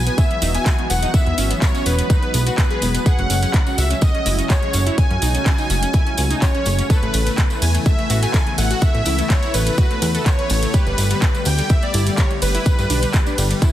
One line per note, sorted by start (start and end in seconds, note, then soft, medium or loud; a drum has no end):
0.00 3.02 E3 medium
0.00 6.86 F#3 medium
0.00 6.86 G#3 medium
0.00 3.02 B3 medium
0.00 3.02 F#4 medium
0.00 0.19 G#5 loud
0.07 0.14 B3 medium
0.07 closed hi-hat medium
0.07 tambourine soft
0.18 0.26 B3 medium
0.18 0.56 E5 loud
0.18 kick loud
0.18 closed hi-hat medium
0.18 tambourine soft
0.31 0.38 B3 medium
0.31 closed hi-hat soft
0.42 0.58 E1 medium
0.42 0.50 D#4 medium
0.42 open hi-hat loud
0.42 tambourine medium
0.55 0.62 B3 medium
0.55 0.88 G#5 loud
0.55 closed hi-hat medium
0.55 tambourine soft
0.66 0.74 F#4 medium
0.66 kick loud
0.66 clap loud
0.66 closed hi-hat medium
0.66 tambourine medium
0.79 0.86 B3 medium
0.79 closed hi-hat soft
0.90 1.06 E1 medium
0.90 0.98 B3 medium
0.90 1.15 F#5 loud
0.90 open hi-hat medium
0.90 tambourine medium
1.03 1.10 D#4 medium
1.03 closed hi-hat medium
1.03 tambourine soft
1.14 1.22 B3 medium
1.14 1.59 E5 loud
1.14 kick loud
1.14 closed hi-hat medium
1.14 tambourine medium
1.27 1.34 E2 medium
1.27 1.34 B3 medium
1.27 closed hi-hat soft
1.38 1.54 G#1 medium
1.38 1.46 C#4 loud
1.38 open hi-hat loud
1.38 tambourine loud
1.51 1.58 B3 medium
1.51 closed hi-hat medium
1.51 tambourine soft
1.62 1.70 B3 medium
1.62 1.84 C#5 medium
1.62 kick loud
1.62 clap loud
1.62 closed hi-hat medium
1.62 tambourine medium
1.75 1.82 C#4 loud
1.75 closed hi-hat soft
1.75 tambourine soft
1.86 2.02 E1 loud
1.86 1.94 B3 medium
1.86 2.57 B4 medium
1.86 2.57 B4 loud
1.86 open hi-hat loud
1.86 tambourine medium
1.99 2.06 B3 medium
1.99 closed hi-hat medium
1.99 tambourine soft
2.10 2.18 D#4 medium
2.10 kick loud
2.10 closed hi-hat medium
2.10 tambourine medium
2.23 2.30 B3 medium
2.23 closed hi-hat soft
2.34 2.50 B1 medium
2.34 2.42 B3 medium
2.34 open hi-hat loud
2.34 tambourine loud
2.47 2.54 F#4 medium
2.47 closed hi-hat medium
2.47 tambourine soft
2.58 2.66 B3 medium
2.58 3.07 B4 medium
2.58 3.07 B4 loud
2.58 kick loud
2.58 clap loud
2.58 closed hi-hat medium
2.58 tambourine medium
2.71 2.78 G#4 medium
2.71 closed hi-hat soft
2.82 2.98 E1 loud
2.82 2.90 B3 medium
2.82 open hi-hat loud
2.82 tambourine medium
2.94 3.02 B3 medium
2.94 closed hi-hat medium
2.94 tambourine soft
3.06 10.70 C#3 medium
3.06 13.72 A3 medium
3.06 6.86 F#4 medium
3.06 3.14 G#4 loud
3.06 3.80 F#5 loud
3.06 kick loud
3.06 closed hi-hat medium
3.06 tambourine medium
3.19 3.26 F#1 loud
3.19 3.26 C#4 medium
3.19 closed hi-hat soft
3.30 3.46 F#1 loud
3.30 3.38 C#4 medium
3.30 open hi-hat loud
3.30 tambourine loud
3.43 3.50 C#4 medium
3.43 closed hi-hat medium
3.43 tambourine soft
3.53 kick loud
3.53 clap loud
3.53 closed hi-hat medium
3.53 tambourine medium
3.67 3.74 C#4 medium
3.67 closed hi-hat soft
3.67 tambourine soft
3.78 3.94 C#2 loud
3.78 4.00 E5 loud
3.78 4.00 E5 medium
3.78 open hi-hat loud
3.78 tambourine medium
3.91 3.98 C#4 medium
3.91 closed hi-hat medium
3.91 tambourine soft
4.01 4.10 C#4 medium
4.01 4.51 D#5 loud
4.01 kick loud
4.01 closed hi-hat medium
4.01 tambourine medium
4.15 4.22 C#4 medium
4.15 closed hi-hat soft
4.26 4.42 F#1 loud
4.26 4.34 E4 medium
4.26 open hi-hat loud
4.26 tambourine loud
4.39 4.46 C#4 medium
4.39 closed hi-hat medium
4.39 tambourine soft
4.49 4.58 G#4 medium
4.49 4.95 C#5 medium
4.49 4.95 C#5 loud
4.49 kick loud
4.49 clap loud
4.49 closed hi-hat medium
4.49 tambourine medium
4.63 4.70 C#4 medium
4.63 closed hi-hat soft
4.73 4.90 F#1 medium
4.73 4.82 C#4 medium
4.73 open hi-hat loud
4.73 tambourine loud
4.86 4.94 E4 medium
4.86 closed hi-hat medium
4.86 tambourine soft
4.98 5.06 C#4 medium
4.98 6.46 G#5 loud
4.98 kick loud
4.98 closed hi-hat medium
4.98 tambourine soft
5.11 5.18 F#2 medium
5.11 5.18 C#4 medium
5.11 closed hi-hat soft
5.22 5.38 B1 medium
5.22 5.30 D#4 loud
5.22 open hi-hat loud
5.22 tambourine loud
5.35 5.42 C#4 medium
5.35 closed hi-hat medium
5.35 tambourine soft
5.46 kick loud
5.46 clap loud
5.46 closed hi-hat medium
5.46 tambourine medium
5.58 5.66 D#4 medium
5.58 closed hi-hat soft
5.58 tambourine soft
5.70 5.86 F#1 loud
5.70 5.78 C#4 medium
5.70 open hi-hat loud
5.70 tambourine medium
5.83 5.90 C#4 medium
5.83 closed hi-hat soft
5.83 tambourine soft
5.93 6.02 E4 loud
5.93 kick loud
5.93 closed hi-hat medium
5.93 tambourine medium
6.07 6.14 C#4 medium
6.07 closed hi-hat soft
6.17 6.34 C#2 medium
6.17 6.26 C#4 medium
6.17 open hi-hat loud
6.17 tambourine medium
6.30 6.38 D#4 medium
6.30 closed hi-hat medium
6.30 tambourine soft
6.42 6.50 C#4 medium
6.42 6.91 C#5 medium
6.42 kick loud
6.42 clap loud
6.42 closed hi-hat medium
6.42 tambourine medium
6.55 6.62 C#4 medium
6.55 closed hi-hat soft
6.66 6.82 F#1 loud
6.66 6.74 C#4 medium
6.66 open hi-hat medium
6.66 tambourine medium
6.79 6.86 C#4 medium
6.79 closed hi-hat medium
6.79 tambourine soft
6.90 10.70 E3 medium
6.90 13.72 B3 medium
6.90 10.70 E4 medium
6.90 6.98 A4 loud
6.90 7.64 B4 medium
6.90 7.64 B4 loud
6.90 kick loud
6.90 closed hi-hat soft
6.90 tambourine medium
7.03 7.10 A1 loud
7.03 7.10 A3 medium
7.03 closed hi-hat soft
7.14 7.30 A1 loud
7.14 7.22 A3 medium
7.14 open hi-hat loud
7.14 ride medium
7.14 tambourine loud
7.27 7.34 A3 medium
7.27 closed hi-hat medium
7.27 tambourine soft
7.37 kick loud
7.37 clap loud
7.37 closed hi-hat soft
7.37 tambourine soft
7.50 7.58 A3 medium
7.50 closed hi-hat soft
7.50 tambourine soft
7.62 7.78 E2 loud
7.62 7.73 G#5 loud
7.62 7.73 G#5 medium
7.62 open hi-hat medium
7.62 ride medium
7.62 tambourine loud
7.74 7.82 A3 medium
7.74 closed hi-hat medium
7.74 tambourine soft
7.86 7.94 A3 medium
7.86 8.20 E5 loud
7.86 kick loud
7.86 closed hi-hat medium
7.86 tambourine medium
7.99 8.06 A3 medium
7.99 closed hi-hat soft
8.10 8.26 A1 loud
8.10 8.18 F#4 medium
8.10 open hi-hat loud
8.10 ride medium
8.10 tambourine loud
8.23 8.30 A3 medium
8.23 8.56 G#5 loud
8.23 closed hi-hat medium
8.23 tambourine soft
8.34 8.42 A4 medium
8.34 kick loud
8.34 clap loud
8.34 closed hi-hat medium
8.34 tambourine soft
8.47 8.54 A3 medium
8.47 closed hi-hat soft
8.58 8.74 A1 medium
8.58 8.66 A3 medium
8.58 8.83 F#5 loud
8.58 open hi-hat medium
8.58 ride medium
8.58 tambourine medium
8.71 8.78 F#4 medium
8.71 closed hi-hat medium
8.71 tambourine soft
8.82 8.90 A3 medium
8.82 9.31 E5 loud
8.82 9.32 E5 medium
8.82 kick loud
8.82 closed hi-hat medium
8.82 tambourine medium
8.95 9.02 A2 medium
8.95 9.02 A3 medium
8.95 closed hi-hat soft
9.06 9.22 C#2 medium
9.06 9.14 E4 loud
9.06 open hi-hat loud
9.06 ride medium
9.06 tambourine loud
9.19 9.26 A3 medium
9.19 closed hi-hat medium
9.19 tambourine soft
9.30 9.55 C#5 medium
9.30 kick loud
9.30 clap loud
9.30 closed hi-hat medium
9.30 tambourine soft
9.42 9.50 E4 loud
9.42 closed hi-hat soft
9.42 tambourine soft
9.54 9.70 A1 loud
9.54 9.62 A3 medium
9.54 10.28 B4 medium
9.54 10.28 B4 loud
9.54 open hi-hat medium
9.54 ride medium
9.54 tambourine loud
9.66 9.74 A3 medium
9.66 closed hi-hat medium
9.66 tambourine soft
9.78 9.86 F#4 loud
9.78 kick loud
9.78 closed hi-hat medium
9.78 tambourine soft
9.91 9.98 A3 medium
9.91 closed hi-hat soft
10.02 10.18 E2 medium
10.02 10.10 A3 medium
10.02 open hi-hat loud
10.02 ride medium
10.02 tambourine medium
10.15 10.22 A4 medium
10.15 closed hi-hat medium
10.15 tambourine soft
10.26 10.75 C#5 medium
10.26 kick loud
10.26 clap loud
10.26 closed hi-hat medium
10.26 tambourine medium
10.39 10.46 B4 medium
10.39 closed hi-hat soft
10.50 10.66 A1 loud
10.50 10.58 A3 medium
10.50 open hi-hat medium
10.50 ride medium
10.50 tambourine medium
10.62 10.70 A3 medium
10.62 closed hi-hat medium
10.62 tambourine soft
10.73 13.72 D3 medium
10.73 13.72 G3 medium
10.73 10.82 G4 loud
10.73 13.72 G4 medium
10.73 11.42 B4 medium
10.73 11.42 B4 loud
10.73 kick loud
10.73 closed hi-hat medium
10.73 tambourine soft
10.87 10.94 G1 loud
10.87 10.94 G3 medium
10.87 closed hi-hat soft
10.98 11.14 G1 loud
10.98 11.06 G3 medium
10.98 open hi-hat loud
10.98 ride medium
10.98 tambourine medium
11.11 11.18 G3 medium
11.11 closed hi-hat medium
11.11 tambourine soft
11.22 kick loud
11.22 clap loud
11.22 closed hi-hat medium
11.22 tambourine medium
11.35 11.42 G3 medium
11.35 closed hi-hat soft
11.35 tambourine soft
11.45 11.62 D2 loud
11.45 11.71 G5 medium
11.45 11.71 G5 loud
11.45 open hi-hat medium
11.45 ride medium
11.45 tambourine medium
11.58 11.66 G3 medium
11.58 closed hi-hat medium
11.58 tambourine soft
11.69 11.78 G3 medium
11.69 11.83 E5 loud
11.69 11.83 E5 medium
11.69 kick loud
11.69 closed hi-hat medium
11.69 tambourine medium
11.83 11.90 G3 medium
11.83 12.19 D5 medium
11.83 closed hi-hat soft
11.94 12.10 G1 loud
11.94 12.02 E4 medium
11.94 open hi-hat loud
11.94 ride medium
11.94 tambourine medium
12.07 12.14 G3 medium
12.07 closed hi-hat medium
12.07 tambourine soft
12.17 12.26 G4 loud
12.17 12.29 C#5 medium
12.17 kick loud
12.17 clap loud
12.17 closed hi-hat medium
12.17 tambourine soft
12.31 12.38 G3 medium
12.31 closed hi-hat soft
12.42 12.58 G1 medium
12.42 12.50 G3 medium
12.42 13.72 B4 medium
12.42 open hi-hat medium
12.42 ride medium
12.42 tambourine medium
12.55 12.62 E4 medium
12.55 closed hi-hat medium
12.55 tambourine soft
12.66 12.74 G3 medium
12.66 kick loud
12.66 closed hi-hat medium
12.66 tambourine medium
12.79 12.86 G2 medium
12.79 12.86 G3 medium
12.79 closed hi-hat soft
12.79 tambourine soft
12.90 13.06 B1 medium
12.90 12.98 D4 loud
12.90 open hi-hat loud
12.90 ride medium
12.90 tambourine medium
13.03 13.10 G3 medium
13.03 closed hi-hat medium
13.03 tambourine soft
13.13 13.22 G3 medium
13.13 kick loud
13.13 clap loud
13.13 closed hi-hat medium
13.13 tambourine medium
13.26 13.34 D4 loud
13.26 closed hi-hat soft
13.26 tambourine soft
13.38 13.54 G1 loud
13.38 13.46 G3 medium
13.38 open hi-hat medium
13.38 ride medium
13.38 tambourine loud
13.50 13.58 G3 medium
13.50 closed hi-hat medium
13.50 tambourine soft
13.62 13.70 E4 loud
13.62 kick loud
13.62 clap soft
13.62 closed hi-hat medium
13.62 tambourine medium